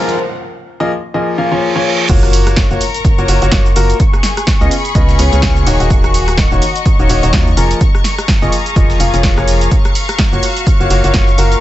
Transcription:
Already playing: F3 A#3 F4 G#4 A#4 D#5 A#5, riser
0.09 closed hi-hat
0.80 F3 A#3 F4 G#4 D#5
1.14 F3 A#3 F4 G#4 D#5, reverse cymbal
1.38 F3 A#3 F4 G#4 F5
1.52 F3 A#3 F4 G#4 C#5
1.75 F3 A#3 F4 G#4 C#5
2.09 F#1 A#3 F4 F#4 C#5 C#6, kick, closed hi-hat, crash, impact, shaker
2.23 A#4, cross-stick, closed hi-hat, shaker
2.33 closed hi-hat, open hi-hat, shaker
2.47 A#5, cross-stick, closed hi-hat, shaker
2.56 kick, snare, closed hi-hat, shaker
2.71 F#1 A#3 F4 F#4 C#5, shaker
2.81 closed hi-hat, open hi-hat, shaker
2.94 closed hi-hat, shaker
3.05 kick, closed hi-hat, shaker
3.18 F#1 A#3 F4 F#4 C#5, shaker
3.28 F#1 A#3 F4 F#4 C#5, closed hi-hat, open hi-hat, shaker
3.42 F#1 A#3 F4 F#4 C#5, closed hi-hat, shaker
3.52 F#1 A#3 F4 F#4 C#5, kick, snare, closed hi-hat, shaker
3.66 shaker
3.76 F#1 A#3 F4 F#4 A#4, closed hi-hat, open hi-hat, shaker
3.90 closed hi-hat, shaker
4.00 kick, closed hi-hat, shaker
4.11 G#4, cross-stick, shaker
4.23 snare, closed hi-hat, open hi-hat, shaker
4.37 cross-stick, closed hi-hat, shaker
4.47 kick, snare, closed hi-hat, shaker
4.61 C#2 C#3 B3 F4 G#4 D#5, shaker
4.71 closed hi-hat, open hi-hat, shaker
4.75 B5
4.85 closed hi-hat, shaker
4.95 C#2 C#3 B3 F4 G#4 D#5, kick, closed hi-hat, shaker
5.09 snare, shaker
5.19 C#2 C#3 B3 F4 G#4 C#5, closed hi-hat, open hi-hat, shaker
5.33 C#2 C#3 B3 F4 G#4 C#5, closed hi-hat, shaker
5.42 kick, snare, closed hi-hat, shaker
5.57 shaker
5.67 D#1 D#3 A#3 D#4 F#4 C#5, open hi-hat, shaker
5.78 D#1 D#3 A#3 D#4 F#4 D#5, closed hi-hat, shaker
5.90 kick, closed hi-hat, shaker
6.04 cross-stick, closed hi-hat, shaker
6.14 closed hi-hat, open hi-hat, shaker
6.28 cross-stick, closed hi-hat, shaker
6.38 D#5, kick, snare, closed hi-hat, shaker
6.52 D#1 D#3 A#3 D#4 F#4 C#5 A#5, shaker
6.62 closed hi-hat, open hi-hat, shaker
6.76 closed hi-hat, shaker
6.86 kick, closed hi-hat, shaker
6.99 D#1 D#3 A#3 D#4 F#4 C#5, shaker
7.09 D#1 D#3 A#3 D#4 F#4 C#5, closed hi-hat, open hi-hat, shaker
7.23 D#1 D#3 A#3 D#4 F#4 C#5, closed hi-hat, shaker
7.33 D#2 F3 A#3 D#4 C#5, kick, snare, closed hi-hat, shaker
7.47 shaker
7.57 F1 F3 A#3 F4 G#4 A#4, closed hi-hat, open hi-hat, shaker
7.71 closed hi-hat, shaker
7.81 kick, closed hi-hat, shaker
7.95 cross-stick, shaker
8.04 snare, closed hi-hat, open hi-hat, shaker
8.11 G#4
8.18 F5, cross-stick, closed hi-hat, shaker
8.28 kick, snare, closed hi-hat, shaker
8.42 F1 F3 A#3 F4 G#4 D#5, shaker
8.52 closed hi-hat, open hi-hat, shaker
8.66 closed hi-hat, shaker
8.76 F1 F3 A#3 F4 G#4 D#5, kick, closed hi-hat, shaker
8.90 snare, shaker
9.00 F1 F3 A#3 F4 G#4 F5, closed hi-hat, open hi-hat, shaker
9.14 F1 F3 A#3 F4 G#4 C#5, closed hi-hat, shaker
9.23 kick, snare, closed hi-hat, shaker
9.37 F1 F3 A#3 F4 G#4 C#5, cross-stick, shaker
9.48 open hi-hat, shaker
9.61 closed hi-hat, shaker
9.71 C#6, kick, closed hi-hat, shaker
9.85 cross-stick, closed hi-hat, shaker
9.95 closed hi-hat, open hi-hat, shaker
10.09 cross-stick, closed hi-hat, shaker
10.18 F#4, kick, snare, closed hi-hat, shaker
10.33 F#1 A#3 F4 F#4 C#5, shaker
10.43 closed hi-hat, open hi-hat, shaker
10.57 closed hi-hat, shaker
10.67 kick, closed hi-hat, shaker
10.80 F#1 A#3 F4 F#4 C#5, shaker
10.90 F#1 A#3 F4 F#4 C#5, closed hi-hat, open hi-hat, shaker
11.04 F#1 A#3 F4 F#4 C#5, closed hi-hat, shaker
11.14 kick, snare, closed hi-hat, shaker
11.28 shaker
11.38 F#1 A#3 F4 F#4 A#4, closed hi-hat, open hi-hat, shaker
11.52 closed hi-hat, shaker

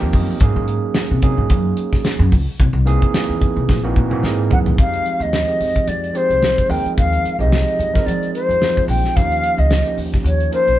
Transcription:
Already playing: F3 A#3 C4 D#4 G4 F5
0.02 D#2
0.13 F#2 D#5, kick, open hi-hat
0.40 G#2 F#3 A#3 C#4 D#4 G#4, kick, closed hi-hat
0.56 G#2
0.68 closed hi-hat
0.94 snare, closed hi-hat
1.11 C3
1.22 F#3 A#3 C#4 D#4 G#4, kick, closed hi-hat
1.38 G#2
1.50 F#2, kick, closed hi-hat
1.77 closed hi-hat
1.93 kick, snare
2.05 snare, closed hi-hat
2.19 F#2
2.32 C#2, kick, open hi-hat
2.60 C2, kick, closed hi-hat
2.73 C2
2.85 E3 A#3 C4 D#4 G#4, closed hi-hat
3.02 kick
3.14 E3 A#3 C4 D#4 G#4, snare, closed hi-hat
3.29 E2
3.41 kick, closed hi-hat
3.56 C3
3.69 A#1, kick, snare
3.83 E3 A#3 C4 D#4 F#4
3.96 A#2, kick
4.10 E3 A#3 C4 D#4 F#4, mid tom
4.23 G#2 E3 A#3 C4 D#4 G#4, snare
4.50 F#2 F#5, floor tom
4.66 floor tom
4.78 F2 F3 G#3 C4 D#4 G4 F5, kick, closed hi-hat
4.93 closed hi-hat
5.06 closed hi-hat
5.20 D#2 D#5, closed hi-hat
5.33 snare, closed hi-hat
5.47 F3 G#3 C4 D#4 G4, closed hi-hat
5.60 F2, open hi-hat
5.76 kick, closed hi-hat
5.87 F2 D5, closed hi-hat
6.04 closed hi-hat
6.13 F3 G#3 C4 D#4 G4 C5, closed hi-hat
6.30 C2, closed hi-hat
6.42 snare, closed hi-hat
6.58 muted upright bass stroke, kick, closed hi-hat
6.69 D#2 F3 G#3 C4 D#4 A#4 G5, open hi-hat
6.85 muted upright bass stroke, closed hi-hat
6.97 D#2 F5, kick, closed hi-hat
7.13 closed hi-hat
7.25 muted upright bass stroke, closed hi-hat
7.39 C2 F3 G#3 C4 D#4 G4 D#5, closed hi-hat
7.52 snare, closed hi-hat
7.68 closed hi-hat
7.79 F2, closed hi-hat
7.93 F3 G#3 C4 D#4 A#4, muted upright bass stroke, kick, snare, closed hi-hat
8.06 F3 D5, closed hi-hat
8.23 closed hi-hat
8.35 C5, closed hi-hat
8.49 F2, closed hi-hat
8.60 F3 G#3 C4 D#4 F4, snare, closed hi-hat
8.77 kick, closed hi-hat
8.88 A#1 G5, open hi-hat
9.04 snare, closed hi-hat
9.15 D#2 F3 A#3 C#4 D#4 G4 F5, kick, closed hi-hat
9.32 closed hi-hat
9.44 closed hi-hat
9.58 C#2 D#5, closed hi-hat
9.71 snare, closed hi-hat
9.86 F3 A#3 C#4 D#4 G4, closed hi-hat
9.97 D#2, open hi-hat
10.13 kick, snare, closed hi-hat
10.24 D#2 C#5, closed hi-hat
10.40 closed hi-hat
10.51 F3 A#3 C#4 D#4 A#4 C5, closed hi-hat
10.67 A#1, closed hi-hat

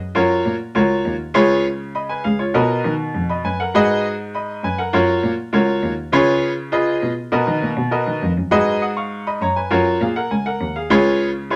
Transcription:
0.15 F#2 F4 F#4 A#4 C#5
0.46 A#2
0.75 C#2 F4 F#4 A#4 C#5
1.05 D#2
1.34 C#2 C#3 F4 G#4 B4 C#5
1.95 D#5 B5
2.09 B4 G#5
2.24 C#2 G#4 F5
2.39 F4 C#5
2.54 B2 F#4 A#4 B4 D#5
2.85 D#3
3.15 F2
3.29 D#5 B5
3.45 F#2 B4 G#5
3.60 A#4 F#5
3.74 G#2 F#4 G#4 B4 D#5
4.35 D#5 B5
4.63 F#2 B4 G#5
4.78 A#4 F#5
4.93 F#2 F4 F#4 A#4 C#5
5.23 A#2
5.53 C#2 F4 F#4 A#4 C#5
5.83 D#2
6.13 C#3 F4 G#4 B4 C#5
6.72 F4 G#4 B4 D#5
7.02 B2
7.32 B2 F#4 A#4 B4 D#5
7.47 D#3
7.62 A#2
7.77 B2
7.91 F#4 A#4 B4 D#5
8.07 D#3
8.22 F2
8.37 F#2
8.51 G#2 F#4 G#4 B4 D#5
8.82 F#5 D#6
8.97 F5 C#6
9.27 D#5 B5
9.41 F#2 C#5 A#5
9.56 B4 G#5
9.71 F#2 F4 F#4 A#4 C#5
10.01 A#2 G#4 F5
10.16 A#4 F#5
10.31 C#2 G#5
10.46 A#4 F#5
10.61 D#2
10.76 G#4 F5
10.90 C#2 C#3 F4 G#4 B4 C#5
11.50 F4 G#4 B4 C#5

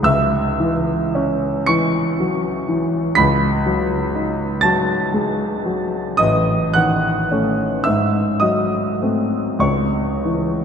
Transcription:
0.03 C#2 E5 E6
0.60 E3
1.15 C#4
1.66 E3 C#6 C#7
2.20 F#3
2.68 E3
3.15 C#2 B5 B6
3.66 F#3
4.15 D#4
4.61 F#3 A5 A6
5.13 G#3
5.66 F#3
6.17 A1 D#5 D#6
6.74 D#3 F#5 F#6
7.31 A3 C#4
7.84 G#2 E5 E6
8.40 F#3 D#5 D#6
9.02 A3 C4
9.59 C#2 C#5 C#6
10.25 E3

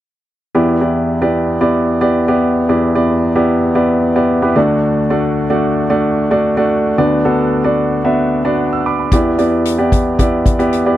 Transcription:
0.55 E2 E3 B3 E4 G4 D5
0.81 B3 E4 G4 D5
1.22 B3 E4 G4 D5
1.61 B3 E4 G4 D5
2.01 B3 E4 G4 D5
2.28 B3 E4 G4 D5
2.69 E2 E3 B3 E4 G4 D5
2.95 B3 E4 G4 D5
3.36 B3 E4 G4 D5
3.75 B3 E4 G4 D5
4.16 B3 E4 G4 D5
4.42 B3 E4 G4 B4
4.56 D2 D3 A3 D4 F#4 D5
5.10 A3 D4 F#4 D5
5.50 A3 D4 F#4 D5
5.90 A3 D4 F#4 D5
6.31 A3 D4 F#4 D5
6.57 A3 D4 F#4 D5
6.98 D2 D3 B3 D4 F#4 D5
7.25 B3 D4 F#4 A4
7.64 B3 D4 F#4 D5
8.04 B3 D4 F#4 E5
8.45 B3 D4 F#4 D5
8.73 E6
8.86 B5 D6
8.99 B5
9.12 E2 E3 B3 E4 G4 D5, kick, closed hi-hat
9.38 B3 E4 G4 D5, closed hi-hat
9.65 closed hi-hat
9.78 B3 E4 G4 D5
9.92 kick, closed hi-hat
10.19 B3 E4 G4 D5, kick, closed hi-hat
10.46 kick, closed hi-hat
10.59 B3 E4 G4 D5, closed hi-hat
10.73 closed hi-hat
10.86 B3 E4 G4 D5

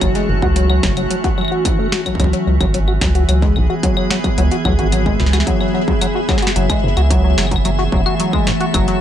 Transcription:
Already playing: E3 A3 C#4 F#4 C#5
0.01 F#1 F#3, kick, closed hi-hat, claves
0.15 G#3, closed hi-hat
0.29 F#1 F#2
0.42 C#2 F#4, kick
0.56 F#3, closed hi-hat
0.70 F#3, claves
0.83 F#1 F#3, kick, snare
0.97 F#3, closed hi-hat, claves
1.11 F#3, closed hi-hat
1.24 F#4, kick, closed hi-hat
1.38 F#3, claves
1.41 claves
1.45 claves
1.48 F#4, claves
1.65 E3, kick, closed hi-hat, claves
1.79 A3
1.92 F#4, snare
2.06 F#3, kick, closed hi-hat, claves
2.15 kick
2.20 C#2 F#3, kick, closed hi-hat, claves
2.24 kick
2.33 F#3, closed hi-hat
2.47 C#2 F#3
2.61 G#1 F#3, kick, closed hi-hat, claves
2.65 G#4
2.70 B3
2.74 F#3, closed hi-hat
2.88 F#4, claves
3.01 C#2 F#3, kick, snare
3.15 F#4, closed hi-hat
3.29 C#2 F#3, closed hi-hat, claves
3.42 G#3, kick
3.56 B1 F#2, claves
3.70 F#4
3.83 F#3, kick, closed hi-hat
3.97 F#3, claves
4.11 F#3, snare
4.16 E5
4.24 F#3, kick, closed hi-hat, claves
4.38 C#2 F#3, closed hi-hat
4.51 F#4, closed hi-hat
4.65 C#2 F#3, kick, claves
4.79 G#1 F#4, closed hi-hat
4.92 F#3, closed hi-hat, claves
5.06 G#3, kick
5.20 C#2 F#2, snare
5.26 snare
5.33 F#4, snare, closed hi-hat, claves
5.40 snare
5.47 F#3, kick, closed hi-hat
5.61 F#3, claves
5.74 F#3
5.88 F#3, kick
6.01 F#3, closed hi-hat, claves
6.15 F#4
6.29 F#3, kick, snare, claves
6.38 snare
6.42 F#4, closed hi-hat
6.47 snare
6.56 F#1 F#3, closed hi-hat
6.70 G#3, kick, closed hi-hat, claves
6.83 F#1 F#2 A3
6.97 C#2 F#4, closed hi-hat, claves
7.11 F#3, kick, closed hi-hat
7.24 F#3
7.38 F#1 F#3, snare, claves
7.47 claves
7.51 F#3, kick, closed hi-hat
7.56 claves
7.63 F#1 F#3 F#4, closed hi-hat, claves
7.79 F#4
7.92 E1 F#3, kick
8.06 F#4, claves
8.20 F#3, closed hi-hat
8.33 G#3, kick, claves
8.47 F#2, snare
8.60 F#4, closed hi-hat
8.74 F#1 F#3, kick, closed hi-hat, claves
8.88 F#3, closed hi-hat

